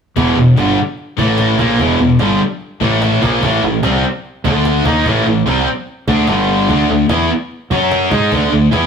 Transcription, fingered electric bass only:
0, 0, Header, 1, 2, 480
1, 0, Start_track
1, 0, Tempo, 407332
1, 191, Time_signature, 4, 2, 24, 8
1, 10447, End_track
2, 0, Start_track
2, 0, Title_t, "Fingered electric bass"
2, 0, Program_c, 0, 33
2, 195, Note_on_c, 0, 28, 87
2, 416, Note_off_c, 0, 28, 0
2, 438, Note_on_c, 0, 28, 86
2, 658, Note_off_c, 0, 28, 0
2, 681, Note_on_c, 0, 31, 91
2, 900, Note_off_c, 0, 31, 0
2, 1392, Note_on_c, 0, 33, 89
2, 1839, Note_off_c, 0, 33, 0
2, 1872, Note_on_c, 0, 34, 94
2, 2096, Note_off_c, 0, 34, 0
2, 2111, Note_on_c, 0, 28, 94
2, 2336, Note_off_c, 0, 28, 0
2, 2354, Note_on_c, 0, 28, 87
2, 2577, Note_off_c, 0, 28, 0
2, 2591, Note_on_c, 0, 31, 86
2, 2816, Note_off_c, 0, 31, 0
2, 3310, Note_on_c, 0, 33, 87
2, 3759, Note_off_c, 0, 33, 0
2, 3803, Note_on_c, 0, 34, 91
2, 4022, Note_off_c, 0, 34, 0
2, 4039, Note_on_c, 0, 33, 83
2, 4261, Note_off_c, 0, 33, 0
2, 4287, Note_on_c, 0, 33, 78
2, 4505, Note_off_c, 0, 33, 0
2, 4525, Note_on_c, 0, 36, 83
2, 4744, Note_off_c, 0, 36, 0
2, 5238, Note_on_c, 0, 38, 89
2, 5683, Note_off_c, 0, 38, 0
2, 5717, Note_on_c, 0, 39, 90
2, 5939, Note_off_c, 0, 39, 0
2, 5959, Note_on_c, 0, 33, 89
2, 6181, Note_off_c, 0, 33, 0
2, 6197, Note_on_c, 0, 33, 79
2, 6419, Note_off_c, 0, 33, 0
2, 6440, Note_on_c, 0, 36, 84
2, 6661, Note_off_c, 0, 36, 0
2, 7159, Note_on_c, 0, 38, 90
2, 7380, Note_off_c, 0, 38, 0
2, 7405, Note_on_c, 0, 31, 98
2, 7846, Note_off_c, 0, 31, 0
2, 7878, Note_on_c, 0, 38, 90
2, 8100, Note_off_c, 0, 38, 0
2, 8115, Note_on_c, 0, 38, 89
2, 8338, Note_off_c, 0, 38, 0
2, 8355, Note_on_c, 0, 40, 86
2, 8577, Note_off_c, 0, 40, 0
2, 9081, Note_on_c, 0, 42, 97
2, 9523, Note_off_c, 0, 42, 0
2, 9562, Note_on_c, 0, 44, 90
2, 9780, Note_off_c, 0, 44, 0
2, 9801, Note_on_c, 0, 38, 92
2, 10019, Note_off_c, 0, 38, 0
2, 10042, Note_on_c, 0, 38, 79
2, 10260, Note_off_c, 0, 38, 0
2, 10282, Note_on_c, 0, 40, 86
2, 10447, Note_off_c, 0, 40, 0
2, 10447, End_track
0, 0, End_of_file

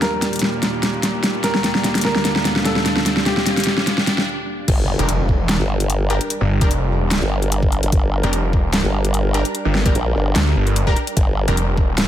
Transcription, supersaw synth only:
0, 0, Header, 1, 2, 480
1, 0, Start_track
1, 0, Key_signature, -2, "minor"
1, 0, Tempo, 405405
1, 1703, Time_signature, 4, 2, 24, 8
1, 14302, End_track
2, 0, Start_track
2, 0, Title_t, "Supersaw synth"
2, 0, Program_c, 0, 81
2, 0, Note_on_c, 0, 39, 81
2, 0, Note_on_c, 0, 46, 74
2, 0, Note_on_c, 0, 55, 96
2, 1682, Note_off_c, 0, 39, 0
2, 1683, Note_off_c, 0, 55, 0
2, 1702, Note_on_c, 0, 38, 80
2, 1702, Note_on_c, 0, 50, 74
2, 1702, Note_on_c, 0, 55, 91
2, 5014, Note_off_c, 0, 46, 0
2, 5028, Note_off_c, 0, 38, 0
2, 5029, Note_off_c, 0, 50, 0
2, 5029, Note_off_c, 0, 55, 0
2, 5542, Note_on_c, 0, 55, 81
2, 5543, Note_on_c, 0, 62, 77
2, 5543, Note_on_c, 0, 70, 91
2, 14302, Note_off_c, 0, 55, 0
2, 14302, Note_off_c, 0, 62, 0
2, 14302, Note_off_c, 0, 70, 0
2, 14302, End_track
0, 0, End_of_file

